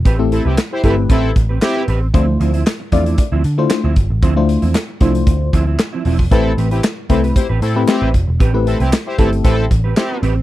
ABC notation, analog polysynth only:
X:1
M:4/4
L:1/16
Q:1/4=115
K:Am
V:1 name="Analog polysynth"
z2 [CEA] [CEG] z [EGc] [CEA] z [CEA]2 z2 [CEG]2 z2 | z16 | z16 | [CEA]2 z [CEG] z2 [CEA] z [EGc] z [CEA]2 [CEG]2 z2 |
z2 [CEA] [CEG] z [EGc] [CEA] z [CEA]2 z2 [CEG]2 z2 |]